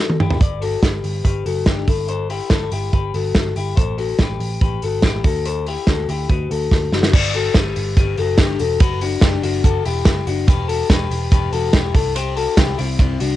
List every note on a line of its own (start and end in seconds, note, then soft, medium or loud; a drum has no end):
0.00 0.17 F#4 soft
0.00 0.17 A4 medium
0.10 high tom medium
0.20 0.40 E4 medium
0.20 0.41 G4 medium
0.20 mid tom medium
0.30 floor tom medium
0.41 0.75 G1 medium
0.41 0.61 B4 medium
0.41 0.62 D5 medium
0.41 kick loud
0.41 closed hi-hat medium
0.62 0.83 F#4 medium
0.62 0.82 A4 medium
0.62 open hi-hat medium
0.83 1.00 G1 medium
0.83 1.23 G4 soft
0.83 1.22 B4 medium
0.83 kick loud
0.83 snare medium
0.83 closed hi-hat medium
1.04 1.21 G1 medium
1.04 open hi-hat medium
1.24 1.42 G1 medium
1.24 1.46 G4 medium
1.24 1.45 B4 medium
1.24 kick medium
1.24 closed hi-hat medium
1.46 1.63 F#1 medium
1.46 1.67 F#4 medium
1.46 1.66 A4 medium
1.46 open hi-hat medium
1.66 1.84 G1 medium
1.66 1.88 D4 medium
1.66 1.88 G4 medium
1.66 kick medium
1.66 snare loud
1.66 closed hi-hat medium
1.88 2.40 G1 medium
1.88 2.08 E4 medium
1.88 2.08 A4 medium
1.88 kick medium
1.88 open hi-hat medium
2.08 2.29 A4 medium
2.08 2.30 C5 medium
2.08 closed hi-hat medium
2.30 2.50 E4 medium
2.30 2.51 G4 medium
2.30 open hi-hat medium
2.50 2.68 G1 medium
2.50 2.72 E4 medium
2.50 2.72 A4 medium
2.50 kick loud
2.50 snare medium
2.50 closed hi-hat medium
2.71 2.89 G1 loud
2.71 2.93 E4 medium
2.71 2.93 G4 medium
2.71 open hi-hat medium
2.93 3.10 G1 medium
2.93 3.14 G4 medium
2.93 3.14 B4 medium
2.93 kick medium
2.93 closed hi-hat medium
3.14 3.31 G1 medium
3.14 3.54 F#4 medium
3.14 3.54 A4 medium
3.14 open hi-hat medium
3.35 3.52 G1 medium
3.35 kick medium
3.35 snare loud
3.35 closed hi-hat medium
3.56 3.73 G1 medium
3.56 3.76 E4 medium
3.56 3.77 G4 medium
3.56 open hi-hat medium
3.76 4.12 A1 medium
3.76 3.97 A4 medium
3.76 3.98 C5 medium
3.76 kick loud
3.76 closed hi-hat medium
3.98 4.19 F#4 medium
3.98 4.19 A4 medium
3.98 open hi-hat medium
4.19 4.37 A1 medium
4.19 4.59 G4 soft
4.19 4.59 B4 medium
4.19 kick loud
4.19 snare medium
4.19 closed hi-hat medium
4.40 4.57 A1 medium
4.40 open hi-hat medium
4.61 4.79 A1 medium
4.61 4.83 G4 medium
4.61 4.83 B4 medium
4.61 kick medium
4.61 closed hi-hat medium
4.82 5.00 G1 medium
4.82 5.04 F#4 medium
4.82 5.03 A4 medium
4.82 open hi-hat medium
5.02 5.21 A1 loud
5.02 5.25 E4 medium
5.02 5.24 G4 medium
5.02 kick medium
5.02 snare loud
5.02 closed hi-hat medium
5.24 5.76 D2 medium
5.24 5.46 F#4 medium
5.24 5.46 A4 medium
5.24 kick loud
5.24 open hi-hat medium
5.45 5.67 A4 medium
5.45 5.67 C5 medium
5.45 closed hi-hat medium
5.67 5.88 E4 medium
5.67 5.88 G4 medium
5.67 open hi-hat medium
5.87 6.05 D2 medium
5.87 6.09 F#4 medium
5.87 6.09 A4 medium
5.87 kick medium
5.87 snare medium
5.87 closed hi-hat medium
6.09 6.26 D2 medium
6.09 6.30 E4 soft
6.09 6.29 G4 medium
6.09 open hi-hat medium
6.30 6.47 D2 medium
6.30 6.51 F#4 medium
6.30 6.51 B4 medium
6.30 kick medium
6.30 closed hi-hat medium
6.51 6.68 D2 medium
6.51 6.91 F#4 medium
6.51 6.90 A4 medium
6.51 open hi-hat medium
6.72 6.89 D2 medium
6.72 kick medium
6.72 snare soft
6.92 7.09 F#1 medium
6.92 7.14 D4 soft
6.92 7.14 F#4 medium
6.92 snare medium
7.03 snare medium
7.14 7.48 G1 loud
7.14 7.34 B4 medium
7.14 7.34 D5 loud
7.14 kick loud
7.14 crash loud
7.34 7.56 F#4 medium
7.34 7.56 A4 medium
7.34 open hi-hat medium
7.54 7.73 G1 loud
7.54 7.95 G4 medium
7.54 7.95 B4 medium
7.54 kick loud
7.54 snare medium
7.54 hi-hat pedal medium
7.54 ride medium
7.76 7.94 G1 loud
7.76 open hi-hat medium
7.97 8.14 G1 medium
7.97 8.19 G4 medium
7.97 8.18 B4 medium
7.97 kick loud
7.97 hi-hat pedal medium
7.97 ride medium
8.18 8.35 F#1 medium
8.18 8.39 F#4 medium
8.18 8.39 A4 medium
8.18 open hi-hat medium
8.38 8.56 G1 loud
8.38 8.60 D4 medium
8.38 8.60 G4 medium
8.38 kick loud
8.38 snare loud
8.38 hi-hat pedal medium
8.38 ride medium
8.59 8.77 E1 medium
8.59 8.80 F#4 medium
8.59 8.81 A4 medium
8.59 open hi-hat medium
8.80 9.15 F#1 loud
8.80 9.00 F#4 medium
8.80 9.02 B4 loud
8.80 kick loud
8.80 hi-hat pedal medium
8.80 ride medium
9.01 9.22 D4 medium
9.01 9.22 F#4 medium
9.01 open hi-hat medium
9.21 9.39 F#1 medium
9.21 9.43 D4 medium
9.21 9.43 G4 medium
9.21 kick loud
9.21 snare loud
9.21 hi-hat pedal medium
9.21 ride medium
9.43 9.61 F#1 loud
9.43 9.65 D4 medium
9.43 9.64 F#4 medium
9.43 open hi-hat medium
9.64 9.81 F#1 loud
9.64 9.85 F#4 medium
9.64 9.85 A4 medium
9.64 kick medium
9.64 hi-hat pedal medium
9.64 ride medium
9.85 10.03 E1 medium
9.85 10.25 E4 medium
9.85 10.24 G4 medium
9.85 open hi-hat medium
10.05 10.23 F#1 loud
10.05 kick loud
10.05 snare loud
10.05 hi-hat pedal medium
10.05 ride medium
10.27 10.44 F#1 medium
10.27 10.49 D4 medium
10.27 10.48 F#4 medium
10.27 open hi-hat medium
10.48 10.82 E1 loud
10.48 10.69 G4 medium
10.48 10.68 B4 loud
10.48 kick loud
10.48 hi-hat pedal medium
10.48 ride medium
10.68 10.90 F#4 medium
10.68 10.89 A4 medium
10.68 open hi-hat medium
10.90 11.07 E1 medium
10.90 11.29 G4 medium
10.90 11.29 B4 medium
10.90 kick loud
10.90 snare loud
10.90 hi-hat pedal medium
10.90 ride medium
11.11 11.28 E1 loud
11.11 open hi-hat medium
11.32 11.49 E1 loud
11.32 11.53 G4 medium
11.32 11.52 B4 medium
11.32 kick loud
11.32 hi-hat pedal medium
11.32 ride medium
11.53 11.70 E1 medium
11.53 11.74 F#4 medium
11.53 11.73 A4 medium
11.53 open hi-hat medium
11.73 11.91 E1 loud
11.73 11.94 E4 medium
11.73 11.95 G4 medium
11.73 kick loud
11.73 snare loud
11.73 hi-hat pedal medium
11.73 ride medium
11.94 12.46 C2 loud
11.94 12.16 E4 medium
11.94 12.15 A4 medium
11.94 kick loud
11.94 open hi-hat medium
12.15 12.37 G4 medium
12.15 12.36 C5 loud
12.15 hi-hat pedal medium
12.15 ride medium
12.36 12.57 F#4 medium
12.36 12.57 A4 medium
12.36 open hi-hat medium
12.57 12.74 C2 loud
12.57 12.77 E4 medium
12.57 12.78 G4 medium
12.57 kick loud
12.57 snare loud
12.57 hi-hat pedal medium
12.57 ride medium
12.78 12.96 C2 loud
12.78 12.99 C4 medium
12.78 12.98 E4 medium
12.78 open hi-hat medium
12.99 13.16 C2 loud
12.99 13.20 C4 medium
12.99 13.20 E4 medium
12.99 kick loud
12.99 hi-hat pedal medium
12.99 ride medium
13.20 13.36 C2 loud
13.20 13.36 D4 medium
13.20 13.36 F#4 medium
13.20 open hi-hat medium